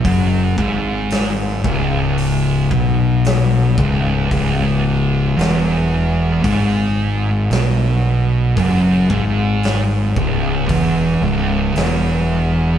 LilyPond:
<<
  \new Staff \with { instrumentName = "Distorted electric guitar" } { \clef bass \time 4/4 \key cis \minor \tempo 4 = 56 fis,8 gis,4 cis,4 b,4 cis,8 | cis,4 e,4 gis,4 b,4 | fis,8 gis,4 cis,8 e,8 cis,8 e,4 | }
  \new Staff \with { instrumentName = "Distorted electric guitar" } { \clef bass \time 4/4 \key cis \minor fis,8 gis,4 cis,4 b,4 cis,8 | cis,4 e,4 gis,4 b,4 | fis,8 gis,4 cis,8 e,8 cis,8 e,4 | }
  \new Staff \with { instrumentName = "Fingered electric bass" } { \clef bass \time 4/4 \key cis \minor fis,,8 gis,,4 cis,,4 b,,4 cis,,8 | cis,,4 e,,4 gis,,4 b,,4 | fis,,8 gis,,4 cis,,8 e,,8 cis,,8 e,,4 | }
  \new DrumStaff \with { instrumentName = "Drums" } \drummode { \time 4/4 <hho bd>8 bd8 <hho sn>8 bd8 hho8 bd8 <hho sn>8 bd8 | <hho bd>4 <hho sn>4 <hho bd>4 <hho sn>4 | <hho bd>8 bd8 <hho sn>8 bd8 <hho bd>4 <hho sn>4 | }
>>